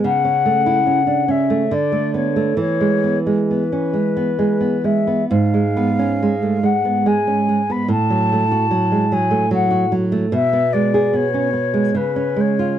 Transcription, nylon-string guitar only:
\new Staff \with { instrumentName = "Nylon-string guitar" } { \time 3/4 \key e \mixolydian \tempo 4 = 71 cis16 cis'16 a16 e'16 cis'16 d'16 cis'16 a16 d16 a16 b16 a16 | e16 gis16 b16 gis16 b16 cis'16 gis16 b16 gis16 b16 gis16 b16 | \key fis \minor gis,16 gis16 b16 cis'16 gis16 a16 gis16 b16 gis16 cis'16 gis16 b16 | a,16 fis16 a16 fis'16 fis16 gis16 fis16 a16 fis16 fis'16 fis16 a16 |
b,16 b16 gis16 gis'16 b16 cis'16 b16 gis16 cis16 cis'16 gis16 eis'16 | }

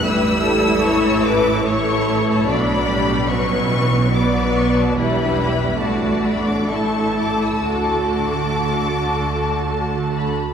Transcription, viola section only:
\new Staff \with { instrumentName = "Viola section" } { \time 3/4 \key d \major \tempo 4 = 71 << { e'2 e'4 | d'4 cis'4 b4 | d'4 d'4 e'4 | fis'2~ fis'8. r16 | } \\ { g4 e4 a4 | fis8 g8 fis8 e8 fis4 | g4 a4 a4 | a2~ a8. r16 | } >> }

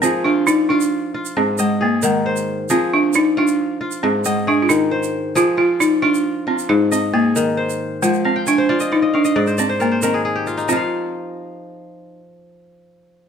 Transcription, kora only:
<<
  \new Staff \with { instrumentName = "Kora" } { \time 12/8 \key f \dorian \tempo 4. = 90 <aes' bes'>8 f'8 d''4. f'4 ees''8 aes'4 c''4 | aes'4 d''4. f'4 ees''8 aes'4 c''4 | aes'8 f'8 d''4. f'4 ees''8 aes'4 c''4~ | c''8 f''16 g''16 aes''16 c''16 d''16 ees''16 d''16 ees''16 f''16 ees''16 d''16 c''16 d''16 c''16 bes'16 c''16 bes'16 aes'16 aes'16 g'16 f'16 ees'16~ |
ees'16 r1 r4. r16 | }
  \new Staff \with { instrumentName = "Kora" } { \clef bass \time 12/8 \key f \dorian f4 r8 f'4 r8 aes,4 r8 ees4 r8 | f4 r8 f'4 r8 aes,4 r8 ees4 r8 | f4 r8 f'4 r8 aes,4 r8 ees4 r8 | f4 r8 f'4 r8 aes,4 r8 ees4 r8 |
<f f' f''>1. | }
>>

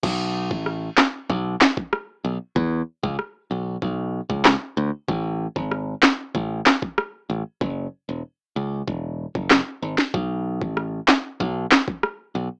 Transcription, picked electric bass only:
\new Staff \with { instrumentName = "Picked electric bass" } { \clef bass \time 4/4 \key a \major \tempo 4 = 95 b,,8. a,,8. r8 b,,8 r4 b,,16 r16 | e,8 r16 cis,16 r8 b,,8 b,,8. cis,8 r16 d,16 r16 | a,,8. gis,,8. r8 a,,8 r4 a,,16 r16 | fis,,8 r16 e,,16 r8 cis,8 e,,8. fis,,8 r16 gis,,16 r16 |
b,,8. a,,8. r8 b,,8 r4 b,,16 r16 | }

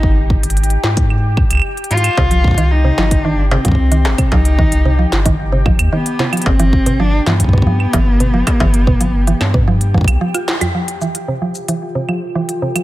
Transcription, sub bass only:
\new Staff \with { instrumentName = "Sub bass" } { \clef bass \time 4/4 \key f \lydian \tempo 4 = 112 aes,,8. aes,,8. aes,4~ aes,16 c,16 r8 aes,16 r16 | c,8. c,8. g,,4~ g,,16 c,8. g,,16 r16 | c,8. c,8. g,,4~ g,,16 ees,16 r4 | g,,8. g,,8. g,4~ g,16 g,,8. f,,16 r16 |
g,,8. g,,8. g,4~ g,16 b,,16 r4 | r1 | }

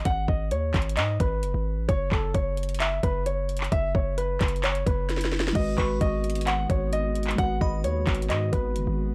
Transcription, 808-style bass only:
\new Staff \with { instrumentName = "808-style bass" } { \clef bass \time 4/4 \key gis \minor \tempo 4 = 131 gis,,8 gis,,8 dis,8 gis,,8 gis,8 gis,,8 fis,,16 gis,,8 a,,16 | fis,,8 fis,,8 fis,,4. fis,,4. | fis,,8 fis,,4 fis,,4 fis,,4. | gis,,8 gis,,8 gis,,4. gis,,4. |
gis,,8 gis,,8 dis,8 gis,,8 gis,8 gis,,8 fis,,16 gis,,8 a,,16 | }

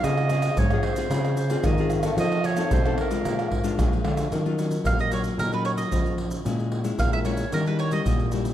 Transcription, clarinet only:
\new Staff \with { instrumentName = "Clarinet" } { \time 4/4 \key bes \minor \tempo 4 = 112 ees''4 des''8 c''4 c''8 ees''8 r8 | ees''8 des''8 c''8 bes'2 r8 | \key ees \minor r1 | r1 | }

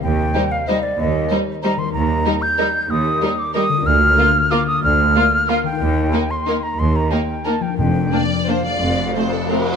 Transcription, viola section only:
\new Staff \with { instrumentName = "Viola section" } { \time 3/4 \key c \minor \tempo 4 = 183 r4 g4 g4 | r4 g4 g4 | \key bes \major r4 g4 g4 | r4 g4 g4 |
r4 bes4 bes4 | r4 bes4 bes4 | r4 bes4 bes4 | r4 bes4 bes4 |
r4 bes4 bes4 | r4 a4 a4 | }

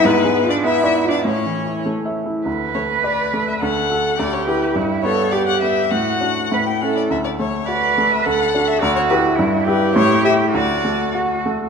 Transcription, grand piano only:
\new Staff \with { instrumentName = "Grand piano" } { \time 2/4 \key d \major \tempo 4 = 103 \tuplet 3/2 { gis,8 gis8 eis'8 b8 d''8 eis'8 } | \tuplet 3/2 { a,8 e8 e'8 a8 e''8 e'8 } | d,8 a8 d''8 a8 | d,8 <fis' a'>8 d,8 <e' g'>8 |
g,8 b8 g'8 b8 | a,8 <d' fis'>8 a,8 <cis' e'>8 | d,8 a8 fis'8 a8 | d,8 <d' fis'>8 d,8 <e' g'>8 |
g,8 <e' g'>8 a,8 <e' g'>8 | d,8 a8 fis'8 a8 | }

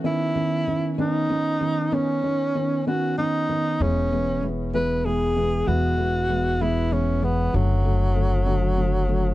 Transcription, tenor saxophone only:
\new Staff \with { instrumentName = "Tenor saxophone" } { \time 6/8 \key e \major \tempo 4. = 64 e'4. dis'4. | cis'4. fis'8 dis'4 | cis'4 r8 b'8 gis'4 | fis'4. e'8 cis'8 b8 |
fis2. | }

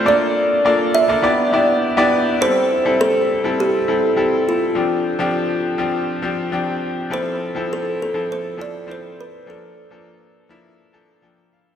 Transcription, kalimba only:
\new Staff \with { instrumentName = "Kalimba" } { \time 4/4 \key a \minor \tempo 4 = 102 d''4 r8 e''2 r8 | c''4 a'4 g'4. f'8~ | f'2~ f'8 r4. | c''4 a'8 a'8 c''8 d''8 c''8 b'8 |
a'2. r4 | }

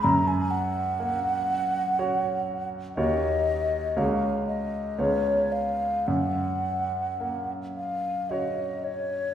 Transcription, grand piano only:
\new Staff \with { instrumentName = "Grand piano" } { \time 3/4 \key fis \major \tempo 4 = 59 fis,4 ais4 <fis' cis''>4 | <dis, ais fis' cis''>4 <cis, ais fis' cis''>4 <cis, b eis' cis''>4 | fis,4 ais4 <fis' cis''>4 | }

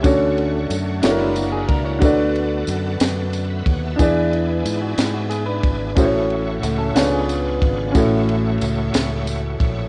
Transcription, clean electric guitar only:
\new Staff \with { instrumentName = "Clean electric guitar" } { \time 6/8 \key fis \minor \tempo 4. = 61 r4. <fis d'>16 <gis e'>16 <ais fis'>16 gis'16 <d' ais'>16 <e' cis''>16~ | <e' cis''>16 r2 r8. | r4 r16 fis'16 <gis e'>16 fis'16 <b gis'>16 <d' b'>8. | r4 <a fis'>16 <cis' a'>8 <b gis'>4~ <b gis'>16 |
r2. | }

